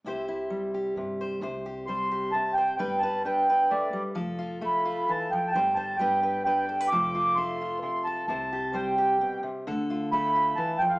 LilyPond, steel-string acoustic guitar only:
\new Staff \with { instrumentName = "Steel-string acoustic guitar" } { \time 3/4 \key c \major \tempo 4 = 131 << { <e' g' c''>8 e'4 g'4 c''8 | c''8 g'8 c''8 g'4 c''8 | b'8 b'8 b'8 b'4. | a'8 f'8 a'8 f'4. |
c''8 c''8 <d' g' b'>8 b'8 b'8 a'16 b'16 | a'8 f'8 a'8 f'4 a'8 | c''8 g'8 c''8 g'4. | a'8 f'8 a'8 f'4. | } \\ { c4 g4 c4 | c4 g4 c4 | g4 d'4 a8 g8 | f4 a4 e8 f8 |
g4 g4 d'4 | f4 a4 c4 | c4 g4 b,8 c8 | d4 a4 e8 f8 | } >> }